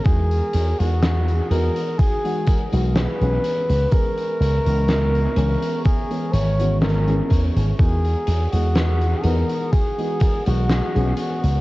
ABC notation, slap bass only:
X:1
M:4/4
L:1/16
Q:"Swing 16ths" 1/4=62
K:Elyd
V:1 name="Slap bass" clef=bass
E,, z E,, E,,3 E,, z4 B,,, z B,,, z C,, | z2 C,, C,,3 C,, z3 G,,,4 E,, G,,, | E,, z E,, E,,3 E,, z4 B,,, z B,,, z C,, |]